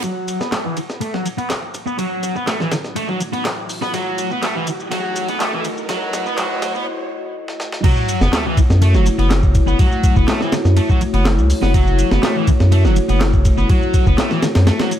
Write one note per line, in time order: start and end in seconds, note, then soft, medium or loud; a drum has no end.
0.03 0.39 F#3 medium
0.03 7.80 A3 medium
0.03 7.80 E4 medium
0.03 7.80 F#4 medium
0.03 3.90 C#5 medium
0.03 kick loud
0.03 ride medium
0.03 riser medium
0.03 shaker soft
0.28 ride medium
0.28 shaker medium
0.40 0.50 B3 medium
0.40 snare medium
0.40 shaker soft
0.52 0.64 A3 medium
0.52 snare loud
0.52 clap loud
0.52 ride medium
0.52 shaker soft
0.65 0.76 E3 medium
0.77 kick loud
0.77 ride medium
0.77 shaker medium
0.90 snare soft
0.90 shaker soft
1.01 1.13 A3 medium
1.01 ride medium
1.01 shaker soft
1.14 1.24 F#3 medium
1.14 snare soft
1.26 ride medium
1.26 shaker medium
1.38 1.48 B3 medium
1.38 ride soft
1.38 shaker soft
1.50 snare loud
1.50 clap loud
1.50 ride medium
1.50 shaker soft
1.63 kick medium
1.74 kick loud
1.74 ride medium
1.74 shaker medium
1.87 1.97 B3 medium
1.87 shaker soft
1.98 2.34 F#3 medium
1.98 kick loud
1.98 ride medium
1.98 shaker soft
2.23 kick loud
2.23 ride medium
2.23 shaker medium
2.35 2.45 B3 medium
2.35 kick loud
2.35 shaker soft
2.47 2.59 A3 medium
2.47 snare loud
2.47 clap loud
2.47 ride medium
2.47 shaker soft
2.60 2.71 E3 medium
2.60 snare soft
2.72 snare loud
2.72 ride medium
2.72 shaker medium
2.84 snare soft
2.84 shaker soft
2.96 3.08 A3 medium
2.96 ride medium
2.96 shaker soft
3.09 3.19 F#3 medium
3.09 kick medium
3.20 ride medium
3.20 shaker medium
3.33 3.43 B3 medium
3.33 ride soft
3.33 shaker soft
3.45 snare loud
3.45 clap loud
3.45 ride medium
3.45 shaker soft
3.69 open hi-hat medium
3.69 shaker medium
3.82 3.92 B3 medium
3.82 snare soft
3.82 shaker soft
3.94 4.30 F#3 medium
3.94 7.80 D#5 medium
3.94 snare soft
3.94 ride medium
3.94 shaker soft
4.18 ride medium
4.18 shaker medium
4.31 4.41 B3 medium
4.31 shaker soft
4.43 4.55 A3 medium
4.43 snare medium
4.43 clap loud
4.43 ride medium
4.43 shaker soft
4.55 4.66 E3 medium
4.67 ride medium
4.67 shaker medium
4.80 shaker soft
4.91 5.27 F#3 medium
4.91 snare medium
4.91 ride medium
4.91 shaker soft
5.16 ride medium
5.16 shaker medium
5.28 5.38 B3 medium
5.28 ride soft
5.28 shaker soft
5.40 5.52 A3 medium
5.40 snare medium
5.40 clap loud
5.40 ride medium
5.40 shaker soft
5.53 5.64 E3 medium
5.65 ride medium
5.65 shaker medium
5.77 shaker soft
5.89 6.25 F#3 medium
5.89 snare medium
5.89 ride medium
5.89 shaker soft
6.13 snare medium
6.13 ride medium
6.13 shaker medium
6.26 6.36 B3 medium
6.26 shaker soft
6.38 6.74 F#3 medium
6.38 snare medium
6.38 clap loud
6.38 ride medium
6.38 shaker soft
6.62 snare medium
6.62 ride medium
6.62 shaker medium
6.75 6.85 B3 medium
6.75 shaker soft
7.48 snare medium
7.60 snare medium
7.72 snare medium
7.84 8.20 F#3 medium
7.84 14.99 A3 medium
7.84 14.99 E4 medium
7.84 14.99 F#4 medium
7.84 14.99 C#5 medium
7.84 kick loud
7.84 crash medium
7.84 ride medium
7.84 sub drop medium
7.84 shaker soft
7.97 shaker soft
8.09 ride medium
8.09 shaker medium
8.21 8.29 F#1 loud
8.21 8.31 B3 medium
8.21 snare medium
8.21 shaker soft
8.33 8.45 A3 medium
8.33 snare loud
8.33 clap loud
8.33 ride medium
8.33 shaker soft
8.46 8.57 E3 medium
8.57 kick loud
8.57 ride medium
8.57 shaker medium
8.70 8.96 F#2 medium
8.70 snare medium
8.70 shaker soft
8.82 8.93 A3 medium
8.82 ride medium
8.82 shaker soft
8.94 9.10 F#1 medium
8.94 9.04 F#3 medium
8.94 snare soft
8.94 shaker soft
9.06 ride medium
9.06 shaker medium
9.19 9.60 F#1 loud
9.19 9.28 B3 medium
9.19 ride soft
9.19 shaker soft
9.30 snare loud
9.30 clap loud
9.30 ride medium
9.30 shaker soft
9.43 kick loud
9.43 shaker soft
9.55 kick medium
9.55 ride medium
9.55 shaker medium
9.67 9.75 F#1 medium
9.67 9.77 B3 medium
9.67 shaker soft
9.79 10.15 F#3 medium
9.79 kick loud
9.79 ride medium
9.79 shaker soft
9.92 shaker soft
10.04 kick loud
10.04 ride medium
10.04 shaker medium
10.16 10.24 F#1 loud
10.16 10.26 B3 medium
10.16 kick loud
10.16 shaker soft
10.28 10.40 A3 medium
10.28 snare loud
10.28 clap loud
10.28 ride medium
10.28 shaker soft
10.41 10.52 E3 medium
10.41 snare soft
10.52 snare loud
10.52 ride medium
10.52 shaker medium
10.65 10.80 F#2 medium
10.65 snare soft
10.65 shaker soft
10.77 10.88 A3 medium
10.77 ride medium
10.77 shaker soft
10.89 10.99 F#3 medium
10.89 kick medium
10.89 shaker soft
11.01 ride medium
11.01 shaker medium
11.14 11.40 F#1 medium
11.14 11.24 B3 medium
11.14 ride soft
11.14 shaker soft
11.25 snare loud
11.25 clap loud
11.25 ride medium
11.25 shaker soft
11.38 11.54 C#2 medium
11.38 shaker soft
11.50 open hi-hat medium
11.50 shaker medium
11.63 12.04 F#1 medium
11.63 11.72 B3 medium
11.63 snare soft
11.63 shaker soft
11.74 12.10 F#3 medium
11.74 kick loud
11.74 ride medium
11.74 shaker soft
11.87 shaker soft
11.99 ride medium
11.99 shaker medium
12.11 12.19 F#1 loud
12.11 12.21 B3 medium
12.11 snare medium
12.11 shaker soft
12.23 12.35 A3 medium
12.23 snare loud
12.23 clap loud
12.23 ride medium
12.23 shaker soft
12.36 12.47 E3 medium
12.47 kick loud
12.47 ride medium
12.47 shaker medium
12.60 12.86 F#2 medium
12.60 snare medium
12.60 shaker soft
12.72 12.83 A3 medium
12.72 ride medium
12.72 shaker soft
12.85 13.00 F#1 medium
12.85 12.94 F#3 medium
12.85 snare soft
12.85 shaker soft
12.96 ride medium
12.96 shaker medium
13.09 13.51 F#1 loud
13.09 13.19 B3 medium
13.09 ride soft
13.09 shaker soft
13.21 snare loud
13.21 clap loud
13.21 ride medium
13.21 shaker soft
13.33 kick loud
13.33 shaker soft
13.45 kick loud
13.45 ride medium
13.45 shaker medium
13.58 13.65 F#1 medium
13.58 13.68 B3 medium
13.58 shaker soft
13.69 14.05 F#3 medium
13.69 kick loud
13.69 ride medium
13.69 shaker soft
13.82 shaker soft
13.94 kick loud
13.94 ride medium
13.94 shaker medium
14.07 14.14 F#1 loud
14.07 14.16 B3 medium
14.07 kick loud
14.07 shaker soft
14.18 14.30 A3 medium
14.18 snare loud
14.18 clap loud
14.18 ride medium
14.18 shaker soft
14.31 14.42 E3 medium
14.31 snare soft
14.31 shaker soft
14.42 snare loud
14.42 ride medium
14.42 shaker medium
14.55 14.71 F#2 medium
14.55 snare loud
14.55 ride medium
14.55 shaker soft
14.67 14.79 A3 medium
14.67 snare loud
14.67 ride medium
14.67 shaker soft
14.80 14.90 F#3 medium
14.80 snare loud
14.80 ride medium
14.80 shaker soft
14.91 ride medium
14.91 shaker medium